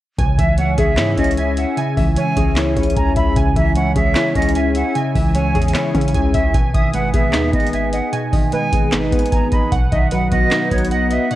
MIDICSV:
0, 0, Header, 1, 6, 480
1, 0, Start_track
1, 0, Key_signature, 4, "minor"
1, 0, Tempo, 397351
1, 222, Time_signature, 4, 2, 24, 8
1, 13716, End_track
2, 0, Start_track
2, 0, Title_t, "Flute"
2, 0, Program_c, 0, 73
2, 462, Note_on_c, 0, 76, 87
2, 690, Note_off_c, 0, 76, 0
2, 701, Note_on_c, 0, 78, 84
2, 930, Note_off_c, 0, 78, 0
2, 941, Note_on_c, 0, 76, 91
2, 1393, Note_off_c, 0, 76, 0
2, 1421, Note_on_c, 0, 75, 86
2, 1650, Note_off_c, 0, 75, 0
2, 1661, Note_on_c, 0, 76, 71
2, 1890, Note_off_c, 0, 76, 0
2, 1903, Note_on_c, 0, 78, 76
2, 2130, Note_off_c, 0, 78, 0
2, 2624, Note_on_c, 0, 80, 94
2, 3074, Note_off_c, 0, 80, 0
2, 3582, Note_on_c, 0, 82, 84
2, 3810, Note_off_c, 0, 82, 0
2, 3823, Note_on_c, 0, 83, 76
2, 4051, Note_off_c, 0, 83, 0
2, 4301, Note_on_c, 0, 76, 80
2, 4530, Note_off_c, 0, 76, 0
2, 4541, Note_on_c, 0, 78, 92
2, 4769, Note_off_c, 0, 78, 0
2, 4782, Note_on_c, 0, 76, 88
2, 5233, Note_off_c, 0, 76, 0
2, 5262, Note_on_c, 0, 75, 82
2, 5490, Note_off_c, 0, 75, 0
2, 5502, Note_on_c, 0, 76, 83
2, 5730, Note_off_c, 0, 76, 0
2, 5742, Note_on_c, 0, 78, 81
2, 5970, Note_off_c, 0, 78, 0
2, 6461, Note_on_c, 0, 80, 85
2, 6913, Note_off_c, 0, 80, 0
2, 7663, Note_on_c, 0, 76, 89
2, 7890, Note_off_c, 0, 76, 0
2, 8143, Note_on_c, 0, 76, 85
2, 8371, Note_off_c, 0, 76, 0
2, 8382, Note_on_c, 0, 78, 83
2, 8610, Note_off_c, 0, 78, 0
2, 8623, Note_on_c, 0, 76, 82
2, 9074, Note_off_c, 0, 76, 0
2, 9101, Note_on_c, 0, 75, 90
2, 9329, Note_off_c, 0, 75, 0
2, 9340, Note_on_c, 0, 76, 69
2, 9569, Note_off_c, 0, 76, 0
2, 9580, Note_on_c, 0, 78, 80
2, 9809, Note_off_c, 0, 78, 0
2, 10301, Note_on_c, 0, 80, 101
2, 10753, Note_off_c, 0, 80, 0
2, 11262, Note_on_c, 0, 82, 76
2, 11490, Note_off_c, 0, 82, 0
2, 11501, Note_on_c, 0, 83, 77
2, 11730, Note_off_c, 0, 83, 0
2, 11982, Note_on_c, 0, 76, 72
2, 12210, Note_off_c, 0, 76, 0
2, 12222, Note_on_c, 0, 78, 87
2, 12450, Note_off_c, 0, 78, 0
2, 12461, Note_on_c, 0, 75, 95
2, 12913, Note_off_c, 0, 75, 0
2, 12942, Note_on_c, 0, 73, 84
2, 13170, Note_off_c, 0, 73, 0
2, 13182, Note_on_c, 0, 75, 89
2, 13410, Note_off_c, 0, 75, 0
2, 13423, Note_on_c, 0, 76, 85
2, 13651, Note_off_c, 0, 76, 0
2, 13716, End_track
3, 0, Start_track
3, 0, Title_t, "Synth keys"
3, 0, Program_c, 1, 88
3, 220, Note_on_c, 1, 80, 102
3, 464, Note_on_c, 1, 76, 91
3, 702, Note_on_c, 1, 73, 87
3, 941, Note_on_c, 1, 68, 90
3, 1180, Note_on_c, 1, 64, 94
3, 1421, Note_on_c, 1, 61, 81
3, 1651, Note_off_c, 1, 80, 0
3, 1665, Note_on_c, 1, 80, 94
3, 1891, Note_off_c, 1, 76, 0
3, 1906, Note_on_c, 1, 76, 83
3, 2132, Note_off_c, 1, 80, 0
3, 2142, Note_off_c, 1, 73, 0
3, 2146, Note_on_c, 1, 80, 107
3, 2364, Note_off_c, 1, 76, 0
3, 2378, Note_on_c, 1, 76, 84
3, 2381, Note_off_c, 1, 68, 0
3, 2621, Note_off_c, 1, 64, 0
3, 2627, Note_on_c, 1, 73, 82
3, 2856, Note_on_c, 1, 68, 88
3, 2862, Note_off_c, 1, 61, 0
3, 3100, Note_on_c, 1, 64, 97
3, 3339, Note_on_c, 1, 61, 81
3, 3567, Note_off_c, 1, 80, 0
3, 3581, Note_on_c, 1, 80, 91
3, 3807, Note_off_c, 1, 76, 0
3, 3822, Note_on_c, 1, 76, 94
3, 4053, Note_off_c, 1, 80, 0
3, 4064, Note_off_c, 1, 73, 0
3, 4067, Note_on_c, 1, 80, 110
3, 4287, Note_off_c, 1, 76, 0
3, 4299, Note_off_c, 1, 68, 0
3, 4301, Note_on_c, 1, 76, 88
3, 4541, Note_off_c, 1, 64, 0
3, 4546, Note_on_c, 1, 73, 86
3, 4780, Note_off_c, 1, 61, 0
3, 4786, Note_on_c, 1, 68, 84
3, 5021, Note_on_c, 1, 64, 99
3, 5259, Note_on_c, 1, 61, 88
3, 5490, Note_off_c, 1, 80, 0
3, 5504, Note_on_c, 1, 80, 105
3, 5725, Note_off_c, 1, 76, 0
3, 5740, Note_on_c, 1, 76, 93
3, 5964, Note_off_c, 1, 80, 0
3, 5979, Note_on_c, 1, 80, 109
3, 5984, Note_off_c, 1, 73, 0
3, 6209, Note_off_c, 1, 76, 0
3, 6223, Note_on_c, 1, 76, 87
3, 6224, Note_off_c, 1, 68, 0
3, 6459, Note_on_c, 1, 73, 89
3, 6461, Note_off_c, 1, 64, 0
3, 6698, Note_on_c, 1, 68, 85
3, 6700, Note_off_c, 1, 61, 0
3, 6944, Note_on_c, 1, 64, 85
3, 7180, Note_on_c, 1, 61, 82
3, 7407, Note_off_c, 1, 80, 0
3, 7421, Note_on_c, 1, 80, 101
3, 7645, Note_off_c, 1, 76, 0
3, 7660, Note_on_c, 1, 76, 91
3, 7885, Note_off_c, 1, 80, 0
3, 7899, Note_on_c, 1, 80, 100
3, 7900, Note_off_c, 1, 68, 0
3, 7900, Note_off_c, 1, 73, 0
3, 7901, Note_off_c, 1, 61, 0
3, 7901, Note_off_c, 1, 76, 0
3, 7903, Note_off_c, 1, 64, 0
3, 8141, Note_on_c, 1, 87, 94
3, 8380, Note_on_c, 1, 71, 88
3, 8621, Note_on_c, 1, 68, 81
3, 8862, Note_on_c, 1, 63, 89
3, 9099, Note_on_c, 1, 59, 69
3, 9329, Note_off_c, 1, 80, 0
3, 9343, Note_on_c, 1, 80, 96
3, 9582, Note_off_c, 1, 87, 0
3, 9582, Note_on_c, 1, 75, 87
3, 9803, Note_off_c, 1, 80, 0
3, 9818, Note_on_c, 1, 80, 109
3, 9821, Note_off_c, 1, 71, 0
3, 10047, Note_off_c, 1, 75, 0
3, 10061, Note_on_c, 1, 75, 88
3, 10062, Note_off_c, 1, 68, 0
3, 10302, Note_off_c, 1, 63, 0
3, 10303, Note_on_c, 1, 71, 93
3, 10541, Note_off_c, 1, 59, 0
3, 10543, Note_on_c, 1, 68, 82
3, 10779, Note_on_c, 1, 63, 97
3, 11017, Note_on_c, 1, 59, 80
3, 11245, Note_off_c, 1, 80, 0
3, 11260, Note_on_c, 1, 80, 94
3, 11491, Note_off_c, 1, 75, 0
3, 11505, Note_on_c, 1, 75, 90
3, 11738, Note_on_c, 1, 78, 108
3, 11739, Note_off_c, 1, 59, 0
3, 11740, Note_off_c, 1, 63, 0
3, 11741, Note_off_c, 1, 80, 0
3, 11742, Note_off_c, 1, 68, 0
3, 11743, Note_off_c, 1, 71, 0
3, 11744, Note_off_c, 1, 75, 0
3, 11982, Note_on_c, 1, 75, 91
3, 12220, Note_on_c, 1, 71, 95
3, 12461, Note_on_c, 1, 66, 81
3, 12701, Note_on_c, 1, 63, 95
3, 12941, Note_on_c, 1, 59, 78
3, 13167, Note_off_c, 1, 78, 0
3, 13182, Note_on_c, 1, 78, 97
3, 13406, Note_off_c, 1, 75, 0
3, 13420, Note_on_c, 1, 75, 93
3, 13645, Note_off_c, 1, 78, 0
3, 13660, Note_on_c, 1, 78, 112
3, 13661, Note_off_c, 1, 71, 0
3, 13716, Note_off_c, 1, 59, 0
3, 13716, Note_off_c, 1, 63, 0
3, 13716, Note_off_c, 1, 66, 0
3, 13716, Note_off_c, 1, 75, 0
3, 13716, Note_off_c, 1, 78, 0
3, 13716, End_track
4, 0, Start_track
4, 0, Title_t, "Clean electric guitar"
4, 0, Program_c, 2, 27
4, 223, Note_on_c, 2, 49, 94
4, 462, Note_on_c, 2, 52, 82
4, 703, Note_on_c, 2, 56, 91
4, 933, Note_on_c, 2, 61, 81
4, 1181, Note_on_c, 2, 73, 97
4, 1414, Note_off_c, 2, 61, 0
4, 1423, Note_off_c, 2, 49, 0
4, 1429, Note_on_c, 2, 61, 86
4, 1662, Note_off_c, 2, 52, 0
4, 1903, Note_off_c, 2, 56, 0
4, 2137, Note_on_c, 2, 49, 92
4, 2382, Note_off_c, 2, 73, 0
4, 2383, Note_on_c, 2, 52, 79
4, 2615, Note_on_c, 2, 56, 92
4, 2625, Note_off_c, 2, 61, 0
4, 2861, Note_on_c, 2, 61, 96
4, 3103, Note_on_c, 2, 73, 102
4, 3330, Note_off_c, 2, 61, 0
4, 3339, Note_off_c, 2, 49, 0
4, 3344, Note_on_c, 2, 61, 80
4, 3582, Note_off_c, 2, 52, 0
4, 3818, Note_off_c, 2, 56, 0
4, 4061, Note_on_c, 2, 49, 98
4, 4297, Note_on_c, 2, 52, 80
4, 4303, Note_off_c, 2, 73, 0
4, 4533, Note_on_c, 2, 56, 89
4, 4543, Note_off_c, 2, 61, 0
4, 4782, Note_on_c, 2, 61, 87
4, 5020, Note_on_c, 2, 73, 94
4, 5245, Note_off_c, 2, 61, 0
4, 5259, Note_on_c, 2, 61, 85
4, 5261, Note_off_c, 2, 49, 0
4, 5499, Note_off_c, 2, 52, 0
4, 5738, Note_off_c, 2, 56, 0
4, 5982, Note_on_c, 2, 49, 90
4, 6220, Note_on_c, 2, 52, 88
4, 6221, Note_off_c, 2, 73, 0
4, 6461, Note_off_c, 2, 61, 0
4, 6465, Note_on_c, 2, 56, 85
4, 6702, Note_on_c, 2, 61, 79
4, 6930, Note_on_c, 2, 73, 98
4, 7167, Note_off_c, 2, 61, 0
4, 7182, Note_off_c, 2, 49, 0
4, 7182, Note_on_c, 2, 61, 92
4, 7421, Note_off_c, 2, 52, 0
4, 7663, Note_off_c, 2, 56, 0
4, 7896, Note_off_c, 2, 73, 0
4, 7902, Note_off_c, 2, 61, 0
4, 7906, Note_on_c, 2, 47, 98
4, 8138, Note_on_c, 2, 51, 77
4, 8377, Note_on_c, 2, 56, 93
4, 8619, Note_on_c, 2, 59, 89
4, 8854, Note_on_c, 2, 71, 97
4, 9085, Note_off_c, 2, 59, 0
4, 9100, Note_on_c, 2, 59, 83
4, 9104, Note_off_c, 2, 47, 0
4, 9340, Note_off_c, 2, 51, 0
4, 9580, Note_off_c, 2, 56, 0
4, 9815, Note_on_c, 2, 47, 96
4, 10058, Note_off_c, 2, 71, 0
4, 10066, Note_on_c, 2, 51, 80
4, 10298, Note_on_c, 2, 56, 92
4, 10301, Note_off_c, 2, 59, 0
4, 10545, Note_on_c, 2, 59, 84
4, 10784, Note_on_c, 2, 71, 104
4, 11003, Note_off_c, 2, 59, 0
4, 11018, Note_off_c, 2, 47, 0
4, 11018, Note_on_c, 2, 59, 89
4, 11264, Note_off_c, 2, 51, 0
4, 11500, Note_off_c, 2, 56, 0
4, 11736, Note_on_c, 2, 47, 99
4, 11740, Note_off_c, 2, 59, 0
4, 11743, Note_off_c, 2, 71, 0
4, 11977, Note_on_c, 2, 51, 80
4, 12224, Note_on_c, 2, 54, 88
4, 12461, Note_on_c, 2, 59, 91
4, 12699, Note_on_c, 2, 71, 98
4, 12917, Note_off_c, 2, 59, 0
4, 12932, Note_on_c, 2, 59, 86
4, 12939, Note_off_c, 2, 47, 0
4, 13180, Note_off_c, 2, 51, 0
4, 13423, Note_off_c, 2, 54, 0
4, 13662, Note_on_c, 2, 47, 97
4, 13716, Note_off_c, 2, 47, 0
4, 13716, Note_off_c, 2, 59, 0
4, 13716, Note_off_c, 2, 71, 0
4, 13716, End_track
5, 0, Start_track
5, 0, Title_t, "808-style bass"
5, 0, Program_c, 3, 38
5, 222, Note_on_c, 3, 37, 116
5, 452, Note_off_c, 3, 37, 0
5, 463, Note_on_c, 3, 37, 106
5, 923, Note_off_c, 3, 37, 0
5, 942, Note_on_c, 3, 37, 108
5, 1182, Note_on_c, 3, 44, 102
5, 1200, Note_off_c, 3, 37, 0
5, 1410, Note_off_c, 3, 44, 0
5, 1421, Note_on_c, 3, 37, 106
5, 1998, Note_off_c, 3, 37, 0
5, 2383, Note_on_c, 3, 37, 103
5, 2613, Note_off_c, 3, 37, 0
5, 2861, Note_on_c, 3, 37, 104
5, 3322, Note_off_c, 3, 37, 0
5, 3341, Note_on_c, 3, 37, 112
5, 3572, Note_off_c, 3, 37, 0
5, 3582, Note_on_c, 3, 37, 110
5, 3812, Note_off_c, 3, 37, 0
5, 3822, Note_on_c, 3, 37, 106
5, 4052, Note_off_c, 3, 37, 0
5, 4062, Note_on_c, 3, 37, 112
5, 4292, Note_off_c, 3, 37, 0
5, 4302, Note_on_c, 3, 37, 110
5, 4763, Note_off_c, 3, 37, 0
5, 4781, Note_on_c, 3, 37, 107
5, 5012, Note_off_c, 3, 37, 0
5, 5262, Note_on_c, 3, 37, 110
5, 5838, Note_off_c, 3, 37, 0
5, 6223, Note_on_c, 3, 37, 108
5, 6684, Note_off_c, 3, 37, 0
5, 6702, Note_on_c, 3, 40, 107
5, 6933, Note_off_c, 3, 40, 0
5, 7182, Note_on_c, 3, 49, 108
5, 7412, Note_off_c, 3, 49, 0
5, 7422, Note_on_c, 3, 37, 112
5, 7653, Note_off_c, 3, 37, 0
5, 7664, Note_on_c, 3, 37, 100
5, 7894, Note_off_c, 3, 37, 0
5, 7902, Note_on_c, 3, 32, 112
5, 8133, Note_off_c, 3, 32, 0
5, 8143, Note_on_c, 3, 32, 108
5, 8603, Note_off_c, 3, 32, 0
5, 8622, Note_on_c, 3, 32, 109
5, 8861, Note_on_c, 3, 39, 102
5, 8879, Note_off_c, 3, 32, 0
5, 9089, Note_off_c, 3, 39, 0
5, 9101, Note_on_c, 3, 32, 107
5, 9677, Note_off_c, 3, 32, 0
5, 10061, Note_on_c, 3, 32, 107
5, 10292, Note_off_c, 3, 32, 0
5, 10541, Note_on_c, 3, 32, 106
5, 11002, Note_off_c, 3, 32, 0
5, 11021, Note_on_c, 3, 32, 108
5, 11252, Note_off_c, 3, 32, 0
5, 11262, Note_on_c, 3, 32, 112
5, 11492, Note_off_c, 3, 32, 0
5, 11502, Note_on_c, 3, 32, 100
5, 11733, Note_off_c, 3, 32, 0
5, 11741, Note_on_c, 3, 35, 109
5, 11972, Note_off_c, 3, 35, 0
5, 11982, Note_on_c, 3, 35, 107
5, 12443, Note_off_c, 3, 35, 0
5, 12462, Note_on_c, 3, 35, 108
5, 12693, Note_off_c, 3, 35, 0
5, 12942, Note_on_c, 3, 35, 108
5, 13518, Note_off_c, 3, 35, 0
5, 13716, End_track
6, 0, Start_track
6, 0, Title_t, "Drums"
6, 222, Note_on_c, 9, 36, 116
6, 223, Note_on_c, 9, 42, 78
6, 343, Note_off_c, 9, 36, 0
6, 343, Note_off_c, 9, 42, 0
6, 463, Note_on_c, 9, 36, 102
6, 464, Note_on_c, 9, 42, 73
6, 584, Note_off_c, 9, 36, 0
6, 585, Note_off_c, 9, 42, 0
6, 695, Note_on_c, 9, 42, 78
6, 816, Note_off_c, 9, 42, 0
6, 942, Note_on_c, 9, 36, 101
6, 942, Note_on_c, 9, 42, 81
6, 1062, Note_off_c, 9, 42, 0
6, 1063, Note_off_c, 9, 36, 0
6, 1176, Note_on_c, 9, 39, 97
6, 1181, Note_on_c, 9, 38, 120
6, 1186, Note_on_c, 9, 42, 76
6, 1297, Note_off_c, 9, 39, 0
6, 1302, Note_off_c, 9, 38, 0
6, 1307, Note_off_c, 9, 42, 0
6, 1421, Note_on_c, 9, 36, 85
6, 1421, Note_on_c, 9, 42, 66
6, 1501, Note_off_c, 9, 42, 0
6, 1501, Note_on_c, 9, 42, 70
6, 1542, Note_off_c, 9, 36, 0
6, 1582, Note_off_c, 9, 42, 0
6, 1582, Note_on_c, 9, 42, 69
6, 1661, Note_off_c, 9, 42, 0
6, 1661, Note_on_c, 9, 42, 80
6, 1781, Note_off_c, 9, 42, 0
6, 1897, Note_on_c, 9, 42, 77
6, 2018, Note_off_c, 9, 42, 0
6, 2143, Note_on_c, 9, 42, 77
6, 2263, Note_off_c, 9, 42, 0
6, 2383, Note_on_c, 9, 36, 104
6, 2384, Note_on_c, 9, 46, 73
6, 2504, Note_off_c, 9, 36, 0
6, 2505, Note_off_c, 9, 46, 0
6, 2615, Note_on_c, 9, 42, 79
6, 2735, Note_off_c, 9, 42, 0
6, 2861, Note_on_c, 9, 42, 82
6, 2862, Note_on_c, 9, 36, 102
6, 2981, Note_off_c, 9, 42, 0
6, 2983, Note_off_c, 9, 36, 0
6, 3096, Note_on_c, 9, 39, 98
6, 3101, Note_on_c, 9, 38, 121
6, 3106, Note_on_c, 9, 42, 76
6, 3217, Note_off_c, 9, 39, 0
6, 3222, Note_off_c, 9, 38, 0
6, 3227, Note_off_c, 9, 42, 0
6, 3341, Note_on_c, 9, 36, 83
6, 3342, Note_on_c, 9, 42, 69
6, 3422, Note_off_c, 9, 42, 0
6, 3422, Note_on_c, 9, 42, 68
6, 3462, Note_off_c, 9, 36, 0
6, 3502, Note_off_c, 9, 42, 0
6, 3502, Note_on_c, 9, 42, 67
6, 3581, Note_off_c, 9, 42, 0
6, 3581, Note_on_c, 9, 42, 78
6, 3582, Note_on_c, 9, 36, 89
6, 3702, Note_off_c, 9, 42, 0
6, 3703, Note_off_c, 9, 36, 0
6, 3817, Note_on_c, 9, 42, 77
6, 3822, Note_on_c, 9, 36, 94
6, 3938, Note_off_c, 9, 42, 0
6, 3943, Note_off_c, 9, 36, 0
6, 4061, Note_on_c, 9, 36, 116
6, 4061, Note_on_c, 9, 42, 79
6, 4182, Note_off_c, 9, 36, 0
6, 4182, Note_off_c, 9, 42, 0
6, 4302, Note_on_c, 9, 36, 102
6, 4303, Note_on_c, 9, 42, 76
6, 4423, Note_off_c, 9, 36, 0
6, 4424, Note_off_c, 9, 42, 0
6, 4534, Note_on_c, 9, 42, 76
6, 4655, Note_off_c, 9, 42, 0
6, 4780, Note_on_c, 9, 42, 84
6, 4782, Note_on_c, 9, 36, 100
6, 4900, Note_off_c, 9, 42, 0
6, 4902, Note_off_c, 9, 36, 0
6, 5015, Note_on_c, 9, 39, 93
6, 5021, Note_on_c, 9, 38, 121
6, 5026, Note_on_c, 9, 42, 74
6, 5136, Note_off_c, 9, 39, 0
6, 5141, Note_off_c, 9, 38, 0
6, 5146, Note_off_c, 9, 42, 0
6, 5260, Note_on_c, 9, 42, 72
6, 5261, Note_on_c, 9, 36, 84
6, 5341, Note_off_c, 9, 42, 0
6, 5341, Note_on_c, 9, 42, 66
6, 5382, Note_off_c, 9, 36, 0
6, 5421, Note_off_c, 9, 42, 0
6, 5421, Note_on_c, 9, 42, 66
6, 5501, Note_off_c, 9, 42, 0
6, 5501, Note_on_c, 9, 42, 82
6, 5621, Note_off_c, 9, 42, 0
6, 5737, Note_on_c, 9, 42, 77
6, 5858, Note_off_c, 9, 42, 0
6, 5983, Note_on_c, 9, 42, 80
6, 6103, Note_off_c, 9, 42, 0
6, 6223, Note_on_c, 9, 36, 100
6, 6224, Note_on_c, 9, 46, 73
6, 6344, Note_off_c, 9, 36, 0
6, 6345, Note_off_c, 9, 46, 0
6, 6456, Note_on_c, 9, 42, 82
6, 6577, Note_off_c, 9, 42, 0
6, 6702, Note_on_c, 9, 42, 49
6, 6703, Note_on_c, 9, 36, 95
6, 6783, Note_off_c, 9, 42, 0
6, 6783, Note_on_c, 9, 42, 65
6, 6823, Note_off_c, 9, 36, 0
6, 6863, Note_off_c, 9, 42, 0
6, 6863, Note_on_c, 9, 42, 87
6, 6937, Note_on_c, 9, 39, 99
6, 6942, Note_on_c, 9, 38, 120
6, 6947, Note_off_c, 9, 42, 0
6, 6947, Note_on_c, 9, 42, 74
6, 7058, Note_off_c, 9, 39, 0
6, 7063, Note_off_c, 9, 38, 0
6, 7068, Note_off_c, 9, 42, 0
6, 7182, Note_on_c, 9, 36, 81
6, 7183, Note_on_c, 9, 42, 49
6, 7263, Note_off_c, 9, 42, 0
6, 7263, Note_on_c, 9, 42, 67
6, 7303, Note_off_c, 9, 36, 0
6, 7343, Note_off_c, 9, 42, 0
6, 7343, Note_on_c, 9, 42, 84
6, 7422, Note_off_c, 9, 42, 0
6, 7422, Note_on_c, 9, 42, 80
6, 7423, Note_on_c, 9, 36, 90
6, 7543, Note_off_c, 9, 36, 0
6, 7543, Note_off_c, 9, 42, 0
6, 7659, Note_on_c, 9, 42, 77
6, 7664, Note_on_c, 9, 36, 92
6, 7780, Note_off_c, 9, 42, 0
6, 7784, Note_off_c, 9, 36, 0
6, 7902, Note_on_c, 9, 36, 120
6, 7903, Note_on_c, 9, 42, 77
6, 8023, Note_off_c, 9, 36, 0
6, 8024, Note_off_c, 9, 42, 0
6, 8143, Note_on_c, 9, 36, 102
6, 8145, Note_on_c, 9, 42, 72
6, 8264, Note_off_c, 9, 36, 0
6, 8266, Note_off_c, 9, 42, 0
6, 8376, Note_on_c, 9, 42, 79
6, 8497, Note_off_c, 9, 42, 0
6, 8622, Note_on_c, 9, 36, 100
6, 8622, Note_on_c, 9, 42, 79
6, 8742, Note_off_c, 9, 42, 0
6, 8743, Note_off_c, 9, 36, 0
6, 8856, Note_on_c, 9, 39, 93
6, 8861, Note_on_c, 9, 38, 123
6, 8866, Note_on_c, 9, 42, 75
6, 8977, Note_off_c, 9, 39, 0
6, 8982, Note_off_c, 9, 38, 0
6, 8987, Note_off_c, 9, 42, 0
6, 9101, Note_on_c, 9, 36, 86
6, 9101, Note_on_c, 9, 42, 68
6, 9181, Note_off_c, 9, 42, 0
6, 9181, Note_on_c, 9, 42, 68
6, 9222, Note_off_c, 9, 36, 0
6, 9261, Note_off_c, 9, 42, 0
6, 9261, Note_on_c, 9, 42, 67
6, 9341, Note_off_c, 9, 42, 0
6, 9341, Note_on_c, 9, 42, 77
6, 9462, Note_off_c, 9, 42, 0
6, 9577, Note_on_c, 9, 42, 79
6, 9698, Note_off_c, 9, 42, 0
6, 9821, Note_on_c, 9, 42, 78
6, 9942, Note_off_c, 9, 42, 0
6, 10062, Note_on_c, 9, 36, 103
6, 10063, Note_on_c, 9, 46, 73
6, 10183, Note_off_c, 9, 36, 0
6, 10184, Note_off_c, 9, 46, 0
6, 10295, Note_on_c, 9, 42, 79
6, 10415, Note_off_c, 9, 42, 0
6, 10540, Note_on_c, 9, 42, 81
6, 10541, Note_on_c, 9, 36, 100
6, 10661, Note_off_c, 9, 42, 0
6, 10662, Note_off_c, 9, 36, 0
6, 10775, Note_on_c, 9, 39, 98
6, 10780, Note_on_c, 9, 38, 123
6, 10785, Note_on_c, 9, 42, 75
6, 10896, Note_off_c, 9, 39, 0
6, 10901, Note_off_c, 9, 38, 0
6, 10906, Note_off_c, 9, 42, 0
6, 11021, Note_on_c, 9, 36, 85
6, 11021, Note_on_c, 9, 42, 67
6, 11101, Note_off_c, 9, 42, 0
6, 11101, Note_on_c, 9, 42, 70
6, 11142, Note_off_c, 9, 36, 0
6, 11181, Note_off_c, 9, 42, 0
6, 11181, Note_on_c, 9, 42, 67
6, 11261, Note_off_c, 9, 42, 0
6, 11261, Note_on_c, 9, 36, 93
6, 11261, Note_on_c, 9, 42, 78
6, 11382, Note_off_c, 9, 36, 0
6, 11382, Note_off_c, 9, 42, 0
6, 11498, Note_on_c, 9, 42, 80
6, 11502, Note_on_c, 9, 36, 91
6, 11619, Note_off_c, 9, 42, 0
6, 11623, Note_off_c, 9, 36, 0
6, 11741, Note_on_c, 9, 36, 117
6, 11741, Note_on_c, 9, 42, 76
6, 11862, Note_off_c, 9, 36, 0
6, 11862, Note_off_c, 9, 42, 0
6, 11983, Note_on_c, 9, 36, 103
6, 11983, Note_on_c, 9, 42, 73
6, 12103, Note_off_c, 9, 36, 0
6, 12104, Note_off_c, 9, 42, 0
6, 12214, Note_on_c, 9, 42, 80
6, 12335, Note_off_c, 9, 42, 0
6, 12461, Note_on_c, 9, 42, 81
6, 12462, Note_on_c, 9, 36, 101
6, 12582, Note_off_c, 9, 42, 0
6, 12583, Note_off_c, 9, 36, 0
6, 12696, Note_on_c, 9, 39, 96
6, 12701, Note_on_c, 9, 38, 120
6, 12706, Note_on_c, 9, 42, 75
6, 12816, Note_off_c, 9, 39, 0
6, 12821, Note_off_c, 9, 38, 0
6, 12826, Note_off_c, 9, 42, 0
6, 12942, Note_on_c, 9, 36, 81
6, 12942, Note_on_c, 9, 42, 69
6, 13022, Note_off_c, 9, 42, 0
6, 13022, Note_on_c, 9, 42, 69
6, 13062, Note_off_c, 9, 36, 0
6, 13102, Note_off_c, 9, 42, 0
6, 13102, Note_on_c, 9, 42, 67
6, 13182, Note_off_c, 9, 42, 0
6, 13182, Note_on_c, 9, 42, 79
6, 13303, Note_off_c, 9, 42, 0
6, 13418, Note_on_c, 9, 42, 78
6, 13539, Note_off_c, 9, 42, 0
6, 13662, Note_on_c, 9, 42, 74
6, 13716, Note_off_c, 9, 42, 0
6, 13716, End_track
0, 0, End_of_file